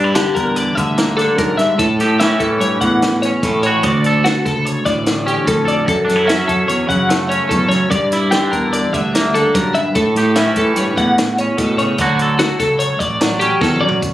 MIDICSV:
0, 0, Header, 1, 5, 480
1, 0, Start_track
1, 0, Key_signature, 2, "major"
1, 0, Tempo, 407609
1, 2113, Time_signature, 5, 2, 24, 8
1, 16647, End_track
2, 0, Start_track
2, 0, Title_t, "Clean electric guitar"
2, 0, Program_c, 0, 27
2, 0, Note_on_c, 0, 74, 89
2, 180, Note_on_c, 0, 67, 74
2, 182, Note_off_c, 0, 74, 0
2, 409, Note_on_c, 0, 70, 67
2, 425, Note_off_c, 0, 67, 0
2, 662, Note_off_c, 0, 70, 0
2, 662, Note_on_c, 0, 74, 80
2, 886, Note_off_c, 0, 74, 0
2, 886, Note_on_c, 0, 76, 72
2, 1375, Note_on_c, 0, 69, 72
2, 1379, Note_off_c, 0, 76, 0
2, 1623, Note_off_c, 0, 69, 0
2, 1628, Note_on_c, 0, 70, 77
2, 1854, Note_on_c, 0, 76, 78
2, 1870, Note_off_c, 0, 70, 0
2, 2104, Note_off_c, 0, 76, 0
2, 2105, Note_on_c, 0, 69, 96
2, 2586, Note_on_c, 0, 76, 82
2, 2590, Note_off_c, 0, 69, 0
2, 2821, Note_on_c, 0, 69, 77
2, 2831, Note_off_c, 0, 76, 0
2, 3068, Note_off_c, 0, 69, 0
2, 3068, Note_on_c, 0, 73, 77
2, 3302, Note_off_c, 0, 73, 0
2, 3307, Note_on_c, 0, 78, 72
2, 3793, Note_off_c, 0, 78, 0
2, 3794, Note_on_c, 0, 73, 74
2, 4029, Note_off_c, 0, 73, 0
2, 4029, Note_on_c, 0, 69, 81
2, 4274, Note_off_c, 0, 69, 0
2, 4277, Note_on_c, 0, 73, 84
2, 4513, Note_off_c, 0, 73, 0
2, 4513, Note_on_c, 0, 74, 85
2, 4996, Note_on_c, 0, 66, 80
2, 4997, Note_off_c, 0, 74, 0
2, 5245, Note_off_c, 0, 66, 0
2, 5245, Note_on_c, 0, 69, 74
2, 5478, Note_on_c, 0, 73, 71
2, 5484, Note_off_c, 0, 69, 0
2, 5713, Note_off_c, 0, 73, 0
2, 5717, Note_on_c, 0, 74, 75
2, 6201, Note_off_c, 0, 74, 0
2, 6201, Note_on_c, 0, 67, 71
2, 6443, Note_off_c, 0, 67, 0
2, 6450, Note_on_c, 0, 69, 78
2, 6687, Note_off_c, 0, 69, 0
2, 6687, Note_on_c, 0, 74, 75
2, 6925, Note_off_c, 0, 74, 0
2, 6929, Note_on_c, 0, 69, 92
2, 7392, Note_on_c, 0, 76, 73
2, 7407, Note_off_c, 0, 69, 0
2, 7627, Note_on_c, 0, 69, 67
2, 7638, Note_off_c, 0, 76, 0
2, 7869, Note_on_c, 0, 73, 75
2, 7876, Note_off_c, 0, 69, 0
2, 8105, Note_off_c, 0, 73, 0
2, 8110, Note_on_c, 0, 78, 72
2, 8580, Note_off_c, 0, 78, 0
2, 8585, Note_on_c, 0, 73, 73
2, 8821, Note_on_c, 0, 69, 78
2, 8835, Note_off_c, 0, 73, 0
2, 9051, Note_on_c, 0, 73, 85
2, 9072, Note_off_c, 0, 69, 0
2, 9305, Note_off_c, 0, 73, 0
2, 9310, Note_on_c, 0, 74, 92
2, 9785, Note_on_c, 0, 67, 80
2, 9796, Note_off_c, 0, 74, 0
2, 10023, Note_on_c, 0, 70, 67
2, 10034, Note_off_c, 0, 67, 0
2, 10272, Note_off_c, 0, 70, 0
2, 10278, Note_on_c, 0, 74, 77
2, 10514, Note_off_c, 0, 74, 0
2, 10514, Note_on_c, 0, 76, 78
2, 10997, Note_off_c, 0, 76, 0
2, 11003, Note_on_c, 0, 69, 71
2, 11240, Note_off_c, 0, 69, 0
2, 11240, Note_on_c, 0, 70, 85
2, 11476, Note_on_c, 0, 76, 84
2, 11479, Note_off_c, 0, 70, 0
2, 11717, Note_off_c, 0, 76, 0
2, 11719, Note_on_c, 0, 69, 86
2, 12197, Note_off_c, 0, 69, 0
2, 12199, Note_on_c, 0, 76, 77
2, 12437, Note_off_c, 0, 76, 0
2, 12450, Note_on_c, 0, 69, 69
2, 12687, Note_off_c, 0, 69, 0
2, 12687, Note_on_c, 0, 73, 76
2, 12921, Note_off_c, 0, 73, 0
2, 12926, Note_on_c, 0, 78, 76
2, 13399, Note_off_c, 0, 78, 0
2, 13409, Note_on_c, 0, 73, 72
2, 13633, Note_off_c, 0, 73, 0
2, 13633, Note_on_c, 0, 69, 82
2, 13872, Note_off_c, 0, 69, 0
2, 13876, Note_on_c, 0, 73, 84
2, 14111, Note_off_c, 0, 73, 0
2, 14111, Note_on_c, 0, 74, 98
2, 14588, Note_on_c, 0, 66, 79
2, 14590, Note_off_c, 0, 74, 0
2, 14828, Note_off_c, 0, 66, 0
2, 14833, Note_on_c, 0, 69, 75
2, 15060, Note_on_c, 0, 73, 87
2, 15071, Note_off_c, 0, 69, 0
2, 15298, Note_off_c, 0, 73, 0
2, 15298, Note_on_c, 0, 74, 82
2, 15774, Note_on_c, 0, 67, 74
2, 15784, Note_off_c, 0, 74, 0
2, 16027, Note_off_c, 0, 67, 0
2, 16027, Note_on_c, 0, 69, 84
2, 16259, Note_on_c, 0, 74, 87
2, 16268, Note_off_c, 0, 69, 0
2, 16504, Note_off_c, 0, 74, 0
2, 16647, End_track
3, 0, Start_track
3, 0, Title_t, "Clean electric guitar"
3, 0, Program_c, 1, 27
3, 0, Note_on_c, 1, 43, 74
3, 47, Note_on_c, 1, 64, 50
3, 175, Note_on_c, 1, 50, 69
3, 181, Note_on_c, 1, 62, 50
3, 899, Note_off_c, 1, 50, 0
3, 913, Note_on_c, 1, 50, 56
3, 1152, Note_on_c, 1, 58, 56
3, 1374, Note_off_c, 1, 62, 0
3, 1388, Note_on_c, 1, 62, 59
3, 1593, Note_off_c, 1, 43, 0
3, 1598, Note_on_c, 1, 42, 55
3, 1855, Note_off_c, 1, 42, 0
3, 1864, Note_on_c, 1, 43, 61
3, 2082, Note_off_c, 1, 62, 0
3, 2084, Note_off_c, 1, 58, 0
3, 2085, Note_off_c, 1, 50, 0
3, 2099, Note_on_c, 1, 45, 77
3, 2101, Note_off_c, 1, 64, 0
3, 2109, Note_off_c, 1, 43, 0
3, 2364, Note_on_c, 1, 67, 55
3, 2607, Note_on_c, 1, 52, 65
3, 2617, Note_on_c, 1, 61, 60
3, 3309, Note_off_c, 1, 45, 0
3, 3331, Note_on_c, 1, 40, 66
3, 3827, Note_off_c, 1, 61, 0
3, 3832, Note_on_c, 1, 61, 56
3, 4046, Note_off_c, 1, 40, 0
3, 4055, Note_on_c, 1, 45, 71
3, 4284, Note_off_c, 1, 67, 0
3, 4313, Note_on_c, 1, 66, 59
3, 4497, Note_off_c, 1, 52, 0
3, 4523, Note_on_c, 1, 38, 81
3, 4528, Note_off_c, 1, 45, 0
3, 4558, Note_off_c, 1, 61, 0
3, 4781, Note_off_c, 1, 66, 0
3, 4786, Note_on_c, 1, 69, 62
3, 5724, Note_on_c, 1, 45, 63
3, 6196, Note_on_c, 1, 61, 58
3, 6398, Note_off_c, 1, 38, 0
3, 6412, Note_on_c, 1, 38, 69
3, 6641, Note_off_c, 1, 69, 0
3, 6655, Note_on_c, 1, 69, 55
3, 6881, Note_off_c, 1, 69, 0
3, 6889, Note_off_c, 1, 38, 0
3, 6892, Note_off_c, 1, 61, 0
3, 6894, Note_on_c, 1, 42, 71
3, 6925, Note_off_c, 1, 45, 0
3, 7122, Note_on_c, 1, 62, 58
3, 7252, Note_off_c, 1, 62, 0
3, 7252, Note_on_c, 1, 64, 50
3, 7366, Note_on_c, 1, 54, 63
3, 7385, Note_on_c, 1, 61, 63
3, 8094, Note_on_c, 1, 49, 62
3, 8350, Note_on_c, 1, 57, 63
3, 8583, Note_off_c, 1, 61, 0
3, 8597, Note_on_c, 1, 61, 60
3, 8803, Note_off_c, 1, 42, 0
3, 8808, Note_on_c, 1, 40, 59
3, 9032, Note_off_c, 1, 40, 0
3, 9037, Note_on_c, 1, 42, 61
3, 9276, Note_off_c, 1, 54, 0
3, 9280, Note_off_c, 1, 49, 0
3, 9288, Note_off_c, 1, 57, 0
3, 9291, Note_off_c, 1, 61, 0
3, 9300, Note_off_c, 1, 42, 0
3, 9307, Note_off_c, 1, 64, 0
3, 9311, Note_on_c, 1, 43, 78
3, 9572, Note_on_c, 1, 64, 61
3, 9825, Note_on_c, 1, 50, 66
3, 9831, Note_on_c, 1, 62, 58
3, 10515, Note_off_c, 1, 50, 0
3, 10529, Note_on_c, 1, 50, 61
3, 10773, Note_on_c, 1, 58, 54
3, 10990, Note_off_c, 1, 62, 0
3, 11004, Note_on_c, 1, 62, 59
3, 11233, Note_off_c, 1, 43, 0
3, 11245, Note_on_c, 1, 42, 67
3, 11482, Note_off_c, 1, 42, 0
3, 11497, Note_on_c, 1, 43, 64
3, 11692, Note_off_c, 1, 62, 0
3, 11694, Note_off_c, 1, 50, 0
3, 11694, Note_off_c, 1, 64, 0
3, 11696, Note_off_c, 1, 58, 0
3, 11728, Note_off_c, 1, 43, 0
3, 11729, Note_on_c, 1, 45, 77
3, 11981, Note_on_c, 1, 67, 62
3, 12196, Note_on_c, 1, 52, 66
3, 12209, Note_on_c, 1, 61, 62
3, 12920, Note_off_c, 1, 45, 0
3, 12924, Note_on_c, 1, 40, 64
3, 13400, Note_off_c, 1, 61, 0
3, 13431, Note_on_c, 1, 61, 63
3, 13628, Note_on_c, 1, 47, 63
3, 13870, Note_off_c, 1, 47, 0
3, 13887, Note_on_c, 1, 49, 60
3, 14083, Note_off_c, 1, 52, 0
3, 14088, Note_off_c, 1, 40, 0
3, 14095, Note_off_c, 1, 67, 0
3, 14102, Note_off_c, 1, 61, 0
3, 14119, Note_off_c, 1, 49, 0
3, 14137, Note_on_c, 1, 50, 68
3, 14144, Note_on_c, 1, 54, 61
3, 14149, Note_on_c, 1, 66, 72
3, 14370, Note_off_c, 1, 66, 0
3, 14391, Note_on_c, 1, 69, 60
3, 14604, Note_off_c, 1, 50, 0
3, 15541, Note_off_c, 1, 54, 0
3, 15556, Note_on_c, 1, 54, 64
3, 15805, Note_on_c, 1, 61, 58
3, 16024, Note_on_c, 1, 40, 65
3, 16267, Note_off_c, 1, 40, 0
3, 16274, Note_on_c, 1, 42, 66
3, 16489, Note_off_c, 1, 61, 0
3, 16501, Note_off_c, 1, 69, 0
3, 16512, Note_off_c, 1, 42, 0
3, 16647, Note_off_c, 1, 54, 0
3, 16647, End_track
4, 0, Start_track
4, 0, Title_t, "Fingered electric bass"
4, 0, Program_c, 2, 33
4, 0, Note_on_c, 2, 43, 97
4, 280, Note_off_c, 2, 43, 0
4, 422, Note_on_c, 2, 40, 83
4, 809, Note_off_c, 2, 40, 0
4, 912, Note_on_c, 2, 38, 88
4, 1488, Note_off_c, 2, 38, 0
4, 1636, Note_on_c, 2, 44, 87
4, 2018, Note_off_c, 2, 44, 0
4, 2110, Note_on_c, 2, 45, 97
4, 2207, Note_off_c, 2, 45, 0
4, 2344, Note_on_c, 2, 45, 94
4, 2732, Note_off_c, 2, 45, 0
4, 2829, Note_on_c, 2, 45, 85
4, 3024, Note_off_c, 2, 45, 0
4, 3059, Note_on_c, 2, 43, 91
4, 3258, Note_off_c, 2, 43, 0
4, 3314, Note_on_c, 2, 45, 79
4, 3891, Note_off_c, 2, 45, 0
4, 4037, Note_on_c, 2, 33, 102
4, 4422, Note_off_c, 2, 33, 0
4, 4524, Note_on_c, 2, 38, 99
4, 5099, Note_off_c, 2, 38, 0
4, 5248, Note_on_c, 2, 37, 86
4, 5630, Note_off_c, 2, 37, 0
4, 5724, Note_on_c, 2, 33, 86
4, 6299, Note_off_c, 2, 33, 0
4, 6448, Note_on_c, 2, 41, 89
4, 6830, Note_off_c, 2, 41, 0
4, 6924, Note_on_c, 2, 42, 88
4, 7020, Note_off_c, 2, 42, 0
4, 7159, Note_on_c, 2, 42, 92
4, 7545, Note_off_c, 2, 42, 0
4, 7644, Note_on_c, 2, 42, 86
4, 7836, Note_off_c, 2, 42, 0
4, 7873, Note_on_c, 2, 40, 85
4, 8069, Note_off_c, 2, 40, 0
4, 8121, Note_on_c, 2, 42, 80
4, 8697, Note_off_c, 2, 42, 0
4, 8842, Note_on_c, 2, 42, 102
4, 9226, Note_off_c, 2, 42, 0
4, 9320, Note_on_c, 2, 43, 105
4, 9896, Note_off_c, 2, 43, 0
4, 10049, Note_on_c, 2, 40, 95
4, 10429, Note_off_c, 2, 40, 0
4, 10528, Note_on_c, 2, 38, 87
4, 11099, Note_off_c, 2, 38, 0
4, 11250, Note_on_c, 2, 43, 92
4, 11628, Note_off_c, 2, 43, 0
4, 11725, Note_on_c, 2, 45, 98
4, 11818, Note_off_c, 2, 45, 0
4, 11956, Note_on_c, 2, 45, 97
4, 12339, Note_off_c, 2, 45, 0
4, 12435, Note_on_c, 2, 45, 97
4, 12627, Note_off_c, 2, 45, 0
4, 12678, Note_on_c, 2, 43, 86
4, 12868, Note_off_c, 2, 43, 0
4, 12927, Note_on_c, 2, 45, 76
4, 13495, Note_off_c, 2, 45, 0
4, 13636, Note_on_c, 2, 45, 101
4, 14017, Note_off_c, 2, 45, 0
4, 14125, Note_on_c, 2, 38, 97
4, 14693, Note_off_c, 2, 38, 0
4, 14836, Note_on_c, 2, 37, 95
4, 15216, Note_off_c, 2, 37, 0
4, 15316, Note_on_c, 2, 33, 94
4, 15888, Note_off_c, 2, 33, 0
4, 16038, Note_on_c, 2, 32, 95
4, 16418, Note_off_c, 2, 32, 0
4, 16516, Note_on_c, 2, 31, 82
4, 16647, Note_off_c, 2, 31, 0
4, 16647, End_track
5, 0, Start_track
5, 0, Title_t, "Drums"
5, 177, Note_on_c, 9, 42, 100
5, 185, Note_on_c, 9, 38, 107
5, 295, Note_off_c, 9, 42, 0
5, 303, Note_off_c, 9, 38, 0
5, 426, Note_on_c, 9, 42, 62
5, 427, Note_on_c, 9, 36, 71
5, 544, Note_off_c, 9, 42, 0
5, 545, Note_off_c, 9, 36, 0
5, 661, Note_on_c, 9, 42, 96
5, 779, Note_off_c, 9, 42, 0
5, 911, Note_on_c, 9, 36, 74
5, 913, Note_on_c, 9, 42, 68
5, 1029, Note_off_c, 9, 36, 0
5, 1031, Note_off_c, 9, 42, 0
5, 1150, Note_on_c, 9, 42, 87
5, 1158, Note_on_c, 9, 38, 109
5, 1268, Note_off_c, 9, 42, 0
5, 1276, Note_off_c, 9, 38, 0
5, 1399, Note_on_c, 9, 42, 60
5, 1407, Note_on_c, 9, 38, 32
5, 1517, Note_off_c, 9, 42, 0
5, 1525, Note_off_c, 9, 38, 0
5, 1628, Note_on_c, 9, 42, 90
5, 1631, Note_on_c, 9, 36, 105
5, 1746, Note_off_c, 9, 42, 0
5, 1749, Note_off_c, 9, 36, 0
5, 1870, Note_on_c, 9, 42, 68
5, 1878, Note_on_c, 9, 38, 33
5, 1988, Note_off_c, 9, 42, 0
5, 1996, Note_off_c, 9, 38, 0
5, 2110, Note_on_c, 9, 42, 86
5, 2111, Note_on_c, 9, 36, 99
5, 2228, Note_off_c, 9, 42, 0
5, 2229, Note_off_c, 9, 36, 0
5, 2354, Note_on_c, 9, 42, 65
5, 2362, Note_on_c, 9, 38, 34
5, 2471, Note_off_c, 9, 42, 0
5, 2480, Note_off_c, 9, 38, 0
5, 2593, Note_on_c, 9, 42, 91
5, 2602, Note_on_c, 9, 38, 110
5, 2711, Note_off_c, 9, 42, 0
5, 2719, Note_off_c, 9, 38, 0
5, 2827, Note_on_c, 9, 42, 61
5, 2831, Note_on_c, 9, 36, 74
5, 2945, Note_off_c, 9, 42, 0
5, 2949, Note_off_c, 9, 36, 0
5, 3075, Note_on_c, 9, 42, 96
5, 3192, Note_off_c, 9, 42, 0
5, 3312, Note_on_c, 9, 42, 67
5, 3315, Note_on_c, 9, 36, 77
5, 3430, Note_off_c, 9, 42, 0
5, 3433, Note_off_c, 9, 36, 0
5, 3559, Note_on_c, 9, 42, 91
5, 3567, Note_on_c, 9, 38, 111
5, 3676, Note_off_c, 9, 42, 0
5, 3685, Note_off_c, 9, 38, 0
5, 3801, Note_on_c, 9, 42, 65
5, 3809, Note_on_c, 9, 38, 30
5, 3919, Note_off_c, 9, 42, 0
5, 3927, Note_off_c, 9, 38, 0
5, 4039, Note_on_c, 9, 42, 98
5, 4040, Note_on_c, 9, 36, 114
5, 4047, Note_on_c, 9, 38, 34
5, 4157, Note_off_c, 9, 42, 0
5, 4158, Note_off_c, 9, 36, 0
5, 4165, Note_off_c, 9, 38, 0
5, 4273, Note_on_c, 9, 42, 74
5, 4391, Note_off_c, 9, 42, 0
5, 4511, Note_on_c, 9, 42, 93
5, 4521, Note_on_c, 9, 36, 103
5, 4629, Note_off_c, 9, 42, 0
5, 4638, Note_off_c, 9, 36, 0
5, 4757, Note_on_c, 9, 42, 63
5, 4875, Note_off_c, 9, 42, 0
5, 5009, Note_on_c, 9, 42, 100
5, 5017, Note_on_c, 9, 38, 108
5, 5127, Note_off_c, 9, 42, 0
5, 5135, Note_off_c, 9, 38, 0
5, 5249, Note_on_c, 9, 36, 71
5, 5250, Note_on_c, 9, 42, 62
5, 5259, Note_on_c, 9, 38, 31
5, 5367, Note_off_c, 9, 36, 0
5, 5368, Note_off_c, 9, 42, 0
5, 5376, Note_off_c, 9, 38, 0
5, 5492, Note_on_c, 9, 42, 92
5, 5610, Note_off_c, 9, 42, 0
5, 5721, Note_on_c, 9, 42, 64
5, 5725, Note_on_c, 9, 36, 74
5, 5729, Note_on_c, 9, 38, 30
5, 5839, Note_off_c, 9, 42, 0
5, 5843, Note_off_c, 9, 36, 0
5, 5847, Note_off_c, 9, 38, 0
5, 5961, Note_on_c, 9, 42, 84
5, 5970, Note_on_c, 9, 38, 107
5, 6079, Note_off_c, 9, 42, 0
5, 6087, Note_off_c, 9, 38, 0
5, 6214, Note_on_c, 9, 42, 56
5, 6332, Note_off_c, 9, 42, 0
5, 6446, Note_on_c, 9, 36, 102
5, 6448, Note_on_c, 9, 42, 93
5, 6456, Note_on_c, 9, 38, 35
5, 6564, Note_off_c, 9, 36, 0
5, 6566, Note_off_c, 9, 42, 0
5, 6574, Note_off_c, 9, 38, 0
5, 6689, Note_on_c, 9, 42, 65
5, 6807, Note_off_c, 9, 42, 0
5, 6925, Note_on_c, 9, 36, 102
5, 6933, Note_on_c, 9, 42, 84
5, 7043, Note_off_c, 9, 36, 0
5, 7050, Note_off_c, 9, 42, 0
5, 7175, Note_on_c, 9, 42, 66
5, 7184, Note_on_c, 9, 38, 32
5, 7293, Note_off_c, 9, 42, 0
5, 7301, Note_off_c, 9, 38, 0
5, 7409, Note_on_c, 9, 42, 100
5, 7417, Note_on_c, 9, 38, 117
5, 7527, Note_off_c, 9, 42, 0
5, 7535, Note_off_c, 9, 38, 0
5, 7642, Note_on_c, 9, 42, 61
5, 7643, Note_on_c, 9, 36, 70
5, 7760, Note_off_c, 9, 42, 0
5, 7761, Note_off_c, 9, 36, 0
5, 7882, Note_on_c, 9, 42, 95
5, 7999, Note_off_c, 9, 42, 0
5, 8121, Note_on_c, 9, 36, 71
5, 8128, Note_on_c, 9, 42, 66
5, 8239, Note_off_c, 9, 36, 0
5, 8246, Note_off_c, 9, 42, 0
5, 8362, Note_on_c, 9, 42, 93
5, 8370, Note_on_c, 9, 38, 115
5, 8480, Note_off_c, 9, 42, 0
5, 8488, Note_off_c, 9, 38, 0
5, 8611, Note_on_c, 9, 42, 69
5, 8729, Note_off_c, 9, 42, 0
5, 8842, Note_on_c, 9, 36, 104
5, 8845, Note_on_c, 9, 42, 96
5, 8959, Note_off_c, 9, 36, 0
5, 8962, Note_off_c, 9, 42, 0
5, 9081, Note_on_c, 9, 42, 73
5, 9089, Note_on_c, 9, 38, 36
5, 9199, Note_off_c, 9, 42, 0
5, 9207, Note_off_c, 9, 38, 0
5, 9319, Note_on_c, 9, 42, 97
5, 9321, Note_on_c, 9, 36, 101
5, 9436, Note_off_c, 9, 42, 0
5, 9438, Note_off_c, 9, 36, 0
5, 9558, Note_on_c, 9, 42, 68
5, 9567, Note_on_c, 9, 38, 31
5, 9676, Note_off_c, 9, 42, 0
5, 9684, Note_off_c, 9, 38, 0
5, 9793, Note_on_c, 9, 42, 97
5, 9801, Note_on_c, 9, 38, 122
5, 9911, Note_off_c, 9, 42, 0
5, 9919, Note_off_c, 9, 38, 0
5, 10043, Note_on_c, 9, 42, 61
5, 10044, Note_on_c, 9, 36, 76
5, 10161, Note_off_c, 9, 42, 0
5, 10162, Note_off_c, 9, 36, 0
5, 10283, Note_on_c, 9, 42, 92
5, 10401, Note_off_c, 9, 42, 0
5, 10527, Note_on_c, 9, 36, 79
5, 10528, Note_on_c, 9, 42, 62
5, 10645, Note_off_c, 9, 36, 0
5, 10646, Note_off_c, 9, 42, 0
5, 10773, Note_on_c, 9, 42, 97
5, 10781, Note_on_c, 9, 38, 108
5, 10891, Note_off_c, 9, 42, 0
5, 10899, Note_off_c, 9, 38, 0
5, 11013, Note_on_c, 9, 42, 60
5, 11130, Note_off_c, 9, 42, 0
5, 11243, Note_on_c, 9, 42, 92
5, 11246, Note_on_c, 9, 36, 113
5, 11361, Note_off_c, 9, 42, 0
5, 11363, Note_off_c, 9, 36, 0
5, 11480, Note_on_c, 9, 42, 71
5, 11598, Note_off_c, 9, 42, 0
5, 11718, Note_on_c, 9, 42, 90
5, 11726, Note_on_c, 9, 36, 111
5, 11836, Note_off_c, 9, 42, 0
5, 11844, Note_off_c, 9, 36, 0
5, 11965, Note_on_c, 9, 42, 70
5, 11973, Note_on_c, 9, 38, 33
5, 12083, Note_off_c, 9, 42, 0
5, 12091, Note_off_c, 9, 38, 0
5, 12194, Note_on_c, 9, 42, 101
5, 12202, Note_on_c, 9, 38, 112
5, 12312, Note_off_c, 9, 42, 0
5, 12320, Note_off_c, 9, 38, 0
5, 12432, Note_on_c, 9, 42, 66
5, 12440, Note_on_c, 9, 36, 78
5, 12550, Note_off_c, 9, 42, 0
5, 12558, Note_off_c, 9, 36, 0
5, 12670, Note_on_c, 9, 42, 101
5, 12788, Note_off_c, 9, 42, 0
5, 12923, Note_on_c, 9, 36, 75
5, 12925, Note_on_c, 9, 42, 74
5, 13040, Note_off_c, 9, 36, 0
5, 13043, Note_off_c, 9, 42, 0
5, 13166, Note_on_c, 9, 42, 108
5, 13174, Note_on_c, 9, 38, 115
5, 13284, Note_off_c, 9, 42, 0
5, 13292, Note_off_c, 9, 38, 0
5, 13403, Note_on_c, 9, 42, 72
5, 13521, Note_off_c, 9, 42, 0
5, 13638, Note_on_c, 9, 42, 104
5, 13641, Note_on_c, 9, 36, 119
5, 13756, Note_off_c, 9, 42, 0
5, 13759, Note_off_c, 9, 36, 0
5, 13880, Note_on_c, 9, 42, 70
5, 13998, Note_off_c, 9, 42, 0
5, 14110, Note_on_c, 9, 42, 93
5, 14117, Note_on_c, 9, 36, 117
5, 14228, Note_off_c, 9, 42, 0
5, 14235, Note_off_c, 9, 36, 0
5, 14355, Note_on_c, 9, 42, 64
5, 14473, Note_off_c, 9, 42, 0
5, 14591, Note_on_c, 9, 42, 95
5, 14599, Note_on_c, 9, 38, 114
5, 14709, Note_off_c, 9, 42, 0
5, 14717, Note_off_c, 9, 38, 0
5, 14834, Note_on_c, 9, 36, 71
5, 14835, Note_on_c, 9, 42, 62
5, 14843, Note_on_c, 9, 38, 31
5, 14951, Note_off_c, 9, 36, 0
5, 14953, Note_off_c, 9, 42, 0
5, 14961, Note_off_c, 9, 38, 0
5, 15071, Note_on_c, 9, 42, 93
5, 15188, Note_off_c, 9, 42, 0
5, 15312, Note_on_c, 9, 36, 79
5, 15315, Note_on_c, 9, 42, 66
5, 15430, Note_off_c, 9, 36, 0
5, 15433, Note_off_c, 9, 42, 0
5, 15552, Note_on_c, 9, 42, 95
5, 15561, Note_on_c, 9, 38, 118
5, 15670, Note_off_c, 9, 42, 0
5, 15678, Note_off_c, 9, 38, 0
5, 15791, Note_on_c, 9, 42, 64
5, 15909, Note_off_c, 9, 42, 0
5, 16032, Note_on_c, 9, 36, 108
5, 16044, Note_on_c, 9, 38, 62
5, 16150, Note_off_c, 9, 36, 0
5, 16161, Note_off_c, 9, 38, 0
5, 16199, Note_on_c, 9, 47, 61
5, 16316, Note_off_c, 9, 47, 0
5, 16353, Note_on_c, 9, 43, 103
5, 16471, Note_off_c, 9, 43, 0
5, 16515, Note_on_c, 9, 36, 97
5, 16515, Note_on_c, 9, 42, 80
5, 16633, Note_off_c, 9, 36, 0
5, 16633, Note_off_c, 9, 42, 0
5, 16647, End_track
0, 0, End_of_file